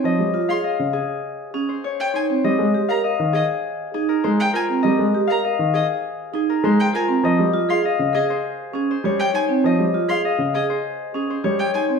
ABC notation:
X:1
M:4/4
L:1/16
Q:1/4=100
K:Dblyd
V:1 name="Violin"
z3 c' z8 z g a z | z3 b z2 e z6 g a z | z3 b z2 e z6 g a z | z3 c' z2 e z6 g a z |
z3 c' z2 e z6 g a z |]
V:2 name="Harp"
[Acdef]3 f e2 A4 A c d2 c2 | e3 f e2 A4 A B c2 B2 | e3 f e2 A4 A B c2 B2 | e3 f e2 A c3 A c d2 c2 |
e3 f e2 A c3 A c d2 c2 |]
V:3 name="Vibraphone"
z2 F A z6 D z3 E C | z2 G B z6 E z3 F C | z2 G B z6 E z3 F C | z2 F A z2 A z3 D z3 E C |
z2 F A z2 A z3 D z3 E C |]
V:4 name="Grand piano" clef=bass
F, G, z3 D, z8 z2 | G, A, z3 E, z6 A, z3 | G, A, z3 E, z6 A, z3 | F, G, z3 D, z6 G, z3 |
F, G, z3 D, z6 G, z3 |]